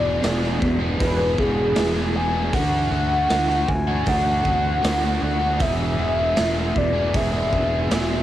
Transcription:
0.00 0.23 E1 medium
0.00 0.20 E2 medium
0.00 0.21 B2 medium
0.00 0.22 E3 medium
0.00 0.22 B3 medium
0.00 0.23 D4 medium
0.00 0.23 G#4 medium
0.00 0.64 D5 loud
0.21 0.61 E1 loud
0.21 0.80 E2 medium
0.21 0.80 B2 loud
0.21 0.43 E3 medium
0.21 0.42 B3 medium
0.21 0.42 D4 loud
0.21 0.40 G#4 loud
0.21 snare loud
0.21 open hi-hat medium
0.41 0.59 E3 medium
0.41 0.59 B3 medium
0.41 0.60 D4 medium
0.41 0.60 G#4 medium
0.41 snare soft
0.60 0.99 E1 medium
0.60 muted overdriven electric guitar stroke soft
0.60 kick medium
0.79 1.18 E3 medium
0.79 1.17 B3 medium
0.79 1.17 D4 medium
0.79 1.16 G#4 medium
1.00 1.37 E1 loud
1.00 1.37 B4 loud
1.00 kick loud
1.00 open hi-hat medium
1.17 1.75 E3 medium
1.17 1.75 B3 medium
1.17 1.75 D4 medium
1.17 1.76 G#4 medium
1.38 1.76 E1 medium
1.38 2.17 G#4 loud
1.38 kick medium
1.75 2.51 E1 loud
1.75 2.33 E2 medium
1.75 2.34 B2 loud
1.75 1.96 E3 medium
1.75 1.94 B3 medium
1.75 1.94 D4 loud
1.75 1.93 G#4 loud
1.75 snare loud
1.75 open hi-hat medium
1.94 2.14 E3 medium
1.94 2.13 B3 medium
1.94 2.14 D4 medium
1.94 2.15 G#4 medium
2.14 2.35 E3 medium
2.14 2.33 B3 medium
2.14 2.33 D4 medium
2.14 2.32 G#4 medium
2.14 2.56 G#5 loud
2.33 2.53 E3 medium
2.33 2.51 B3 medium
2.33 2.51 D4 medium
2.33 2.51 G#4 medium
2.53 2.90 D2 medium
2.53 2.90 D3 medium
2.53 2.90 A3 loud
2.53 2.91 D4 medium
2.53 2.91 F#4 loud
2.53 3.70 F#5 loud
2.53 kick loud
2.53 open hi-hat medium
2.91 3.28 D2 medium
2.91 3.26 D3 medium
2.91 3.28 A3 medium
2.91 3.28 D4 medium
2.91 3.29 F#4 medium
3.28 3.67 D2 medium
3.28 3.67 D3 loud
3.28 3.49 A3 loud
3.28 3.48 D4 medium
3.28 3.47 F#4 loud
3.28 snare loud
3.28 open hi-hat medium
3.48 3.68 A3 medium
3.48 3.68 D4 medium
3.48 3.68 F#4 medium
3.48 snare soft
3.68 4.06 D2 medium
3.68 4.10 G#5 loud
3.68 muted overdriven electric guitar stroke medium
3.68 kick medium
3.87 4.25 A3 medium
3.87 4.25 D4 medium
3.87 4.24 F#4 medium
4.06 4.44 D2 loud
4.06 5.22 F#5 loud
4.06 kick loud
4.06 open hi-hat medium
4.26 4.81 A3 medium
4.26 4.81 D4 medium
4.26 4.82 F#4 medium
4.45 4.82 D2 medium
4.45 kick medium
4.81 5.20 D2 medium
4.81 5.19 D3 medium
4.81 5.02 A3 loud
4.81 5.01 D4 loud
4.81 5.00 F#4 loud
4.81 snare loud
4.81 open hi-hat medium
5.01 5.19 A3 medium
5.01 5.20 D4 medium
5.01 5.21 F#4 medium
5.20 5.59 D2 medium
5.20 5.57 D3 medium
5.20 5.41 A3 medium
5.20 5.39 D4 medium
5.20 5.38 F#4 medium
5.20 5.63 F#5 loud
5.39 5.58 A3 medium
5.39 5.58 D4 medium
5.39 5.57 F#4 medium
5.59 5.97 E1 medium
5.59 6.35 E2 medium
5.59 6.36 B2 medium
5.59 5.97 E3 loud
5.59 5.97 G#3 loud
5.59 5.98 B3 loud
5.59 5.99 G#4 loud
5.59 6.79 E5 loud
5.59 kick loud
5.59 open hi-hat medium
5.98 6.36 E1 medium
5.98 6.36 E3 medium
5.98 6.37 G#3 medium
5.98 6.37 B3 medium
5.98 6.37 G#4 medium
6.36 6.74 E1 medium
6.36 6.94 E2 medium
6.36 6.95 B2 medium
6.36 6.55 E3 medium
6.36 6.54 G#3 loud
6.36 6.53 B3 loud
6.36 6.53 G#4 medium
6.36 snare loud
6.36 open hi-hat medium
6.54 6.73 E3 medium
6.54 6.73 G#3 medium
6.54 6.74 B3 medium
6.54 6.74 G#4 medium
6.74 7.12 E1 medium
6.74 7.17 D5 medium
6.74 muted overdriven electric guitar stroke medium
6.74 kick medium
6.93 7.33 E3 medium
6.93 7.33 G#3 medium
6.93 7.32 B3 medium
6.93 7.31 G#4 medium
7.14 7.51 E1 medium
7.14 8.23 E5 medium
7.14 kick loud
7.14 open hi-hat medium
7.33 7.90 E3 medium
7.33 7.91 G#3 medium
7.33 7.91 B3 medium
7.33 7.92 G#4 medium
7.53 7.89 E1 medium
7.53 kick medium
7.91 8.23 E1 medium
7.91 8.23 E2 medium
7.91 8.23 B2 medium
7.91 8.11 E3 medium
7.91 8.10 G#3 loud
7.91 8.09 B3 medium
7.91 8.08 G#4 loud
7.91 snare loud
7.91 open hi-hat medium
8.09 8.23 E3 medium
8.09 8.23 G#3 medium
8.09 8.23 B3 medium
8.09 8.23 G#4 medium

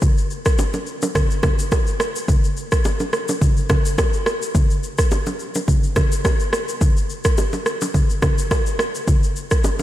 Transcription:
0.02 kick loud
0.02 low conga medium
0.02 shaker medium
0.18 shaker soft
0.31 shaker medium
0.45 kick loud
0.45 cross-stick loud
0.45 shaker medium
0.58 high bongo medium
0.58 low bongo medium
0.58 shaker medium
0.74 low bongo medium
0.74 shaker soft
0.87 shaker medium
1.02 low bongo medium
1.02 shaker loud
1.15 kick medium
1.15 cross-stick loud
1.15 low conga medium
1.15 shaker medium
1.31 shaker soft
1.43 kick medium
1.43 cross-stick loud
1.43 high bongo medium
1.43 low bongo medium
1.43 low conga medium
1.43 shaker medium
1.59 shaker medium
1.72 kick medium
1.72 cross-stick medium
1.72 high bongo medium
1.72 shaker medium
1.87 shaker medium
2.00 cross-stick loud
2.00 high bongo medium
2.00 shaker medium
2.16 shaker medium
2.28 kick loud
2.28 low conga medium
2.28 shaker medium
2.44 shaker soft
2.57 shaker medium
2.72 kick loud
2.72 cross-stick loud
2.72 shaker medium
2.85 high bongo medium
2.85 low bongo medium
2.85 shaker medium
3.00 low bongo medium
3.00 shaker soft
3.13 cross-stick medium
3.13 shaker soft
3.28 low bongo medium
3.28 shaker loud
3.41 kick loud
3.41 low conga medium
3.41 shaker medium
3.57 shaker soft
3.69 kick medium
3.69 cross-stick loud
3.69 high bongo medium
3.69 low bongo medium
3.69 low conga medium
3.69 shaker medium
3.85 shaker medium
3.98 kick medium
3.98 cross-stick loud
3.98 high bongo medium
3.98 shaker medium
4.13 shaker medium
4.26 cross-stick loud
4.26 high bongo medium
4.26 shaker medium
4.42 shaker medium
4.55 kick loud
4.55 low conga medium
4.55 shaker medium
4.71 shaker medium
4.83 shaker medium
4.98 kick loud
4.98 cross-stick loud
4.98 shaker medium
5.11 high bongo medium
5.11 low bongo medium
5.11 shaker medium
5.26 low bongo medium
5.26 shaker soft
5.40 shaker medium
5.55 low bongo medium
5.55 shaker loud
5.68 kick medium
5.68 low conga medium
5.68 shaker medium
5.84 shaker soft
5.96 kick medium
5.96 cross-stick loud
5.96 high bongo medium
5.96 low bongo medium
5.96 low conga medium
5.96 shaker medium
6.12 shaker medium
6.25 kick medium
6.25 cross-stick medium
6.25 high bongo medium
6.25 shaker medium
6.40 shaker medium
6.53 cross-stick loud
6.53 high bongo medium
6.53 shaker medium
6.69 shaker medium
6.81 kick loud
6.81 low conga medium
6.81 shaker medium
6.97 shaker soft
7.10 shaker medium
7.25 kick loud
7.25 cross-stick loud
7.25 shaker medium
7.37 high bongo medium
7.37 low bongo medium
7.37 shaker medium
7.53 low bongo medium
7.53 shaker soft
7.66 cross-stick medium
7.66 shaker soft
7.81 low bongo medium
7.81 shaker loud
7.94 kick medium
7.94 low conga medium
7.94 shaker medium
8.10 shaker soft
8.22 kick medium
8.22 cross-stick loud
8.22 high bongo medium
8.22 low bongo medium
8.22 low conga medium
8.22 shaker medium
8.38 shaker medium
8.51 kick medium
8.51 cross-stick loud
8.51 high bongo medium
8.51 shaker medium
8.66 shaker medium
8.79 cross-stick loud
8.79 high bongo medium
8.79 shaker medium
8.95 shaker medium
9.08 kick loud
9.08 low conga medium
9.08 shaker medium
9.23 shaker medium
9.36 shaker medium
9.51 kick loud
9.51 cross-stick medium
9.51 shaker medium
9.64 high bongo medium
9.64 low bongo medium
9.64 shaker medium
9.79 low bongo medium
9.79 shaker soft

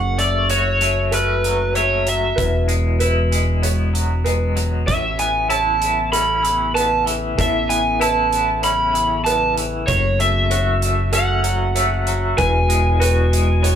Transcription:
0.00 2.33 F#1 medium
0.00 1.44 F#2 soft
0.00 2.33 C#3 medium
0.00 2.34 A3 medium
0.00 4.83 F#4 medium
0.00 0.19 F#5 medium
0.00 0.50 C#6 medium
0.18 0.80 A3 soft
0.18 0.50 D5 medium
0.18 closed hi-hat soft
0.50 2.06 F#4 medium
0.50 1.12 C#5 medium
0.50 1.14 C#5 medium
0.50 closed hi-hat medium
0.81 1.74 A3 soft
0.81 closed hi-hat soft
1.11 2.38 C#4 soft
1.11 1.74 A4 medium
1.11 1.76 B4 medium
1.11 closed hi-hat medium
1.44 2.05 F#3 soft
1.44 closed hi-hat soft
1.74 2.37 A3 medium
1.74 2.37 C#5 medium
1.74 2.08 C#5 medium
1.74 closed hi-hat soft
2.06 2.37 F#3 soft
2.06 2.66 E5 soft
2.06 closed hi-hat soft
2.36 4.84 E1 medium
2.36 3.93 E2 soft
2.36 4.85 E3 medium
2.36 4.85 G#3 medium
2.36 2.98 B4 medium
2.36 kick medium
2.36 closed hi-hat medium
2.68 3.30 G#3 soft
2.68 closed hi-hat soft
2.99 4.59 E4 medium
2.99 3.62 B4 medium
2.99 closed hi-hat medium
3.31 4.23 G#3 soft
3.31 closed hi-hat soft
3.63 4.90 B3 soft
3.63 4.25 C#5 medium
3.63 closed hi-hat medium
3.93 4.55 F#3 soft
3.93 closed hi-hat soft
4.24 4.87 G#3 soft
4.24 4.87 B4 medium
4.24 closed hi-hat soft
4.56 4.87 F#3 soft
4.56 closed hi-hat soft
4.84 7.34 A1 medium
4.84 6.44 A2 soft
4.84 12.33 C#3 medium
4.84 9.83 B3 medium
4.84 9.83 A4 medium
4.84 5.47 C#5 medium
4.84 5.19 E5 medium
4.84 kick medium
4.84 closed hi-hat medium
5.19 5.79 B3 soft
5.19 5.50 G#5 medium
5.19 closed hi-hat soft
5.49 7.06 E4 medium
5.49 6.12 C#5 medium
5.49 6.12 A5 medium
5.49 closed hi-hat soft
5.81 6.73 B3 soft
5.81 closed hi-hat soft
6.12 7.72 C#4 soft
6.12 6.75 A4 medium
6.12 6.75 B5 medium
6.12 closed hi-hat medium
6.43 7.05 E3 soft
6.43 closed hi-hat soft
6.74 7.68 B3 soft
6.74 7.37 B4 medium
6.74 7.04 A5 medium
6.74 closed hi-hat medium
7.06 8.63 E3 soft
7.06 closed hi-hat soft
7.37 9.85 A1 medium
7.37 8.94 A2 medium
7.37 8.00 A4 medium
7.37 7.68 E5 medium
7.37 kick medium
7.37 closed hi-hat medium
7.69 8.30 B3 soft
7.69 8.01 G#5 medium
7.69 closed hi-hat soft
8.00 9.57 E4 medium
8.00 8.63 B4 medium
8.00 8.64 A5 medium
8.00 closed hi-hat medium
8.31 9.25 B3 soft
8.31 closed hi-hat soft
8.63 9.88 C#4 medium
8.63 9.25 C#5 medium
8.63 9.22 B5 medium
8.63 closed hi-hat medium
8.93 9.56 E3 medium
8.93 closed hi-hat soft
9.24 9.88 B3 soft
9.24 9.88 B4 medium
9.24 9.54 A5 medium
9.24 closed hi-hat medium
9.57 9.88 E3 soft
9.57 closed hi-hat soft
9.87 12.35 F#1 medium
9.87 11.45 F#2 medium
9.87 12.36 A3 medium
9.87 13.75 F#4 medium
9.87 10.20 C#5 medium
9.87 10.49 C#5 medium
9.87 kick medium
9.87 closed hi-hat medium
10.19 10.81 A3 soft
10.19 11.13 E5 medium
10.19 closed hi-hat soft
10.50 12.41 F#4 medium
10.50 11.13 C#5 medium
10.50 closed hi-hat medium
10.82 11.74 A3 soft
10.82 closed hi-hat soft
11.12 12.38 C#4 soft
11.12 11.75 A4 medium
11.12 12.42 F#5 medium
11.12 closed hi-hat medium
11.44 12.07 F#3 medium
11.44 closed hi-hat soft
11.75 12.38 A3 medium
11.75 12.38 C#5 medium
11.75 closed hi-hat medium
12.07 12.41 F#3 soft
12.07 closed hi-hat soft
12.37 13.75 E1 medium
12.37 13.75 E2 medium
12.37 13.75 E3 medium
12.37 13.75 G#3 medium
12.37 12.98 B4 medium
12.37 13.75 G#5 medium
12.37 kick medium
12.37 closed hi-hat medium
12.69 13.31 G#3 soft
12.69 closed hi-hat soft
13.00 13.75 F#4 medium
13.00 13.63 B4 medium
13.00 closed hi-hat medium
13.32 13.75 G#3 medium
13.32 closed hi-hat soft
13.63 13.75 B3 medium
13.63 13.75 C#5 medium
13.63 closed hi-hat medium

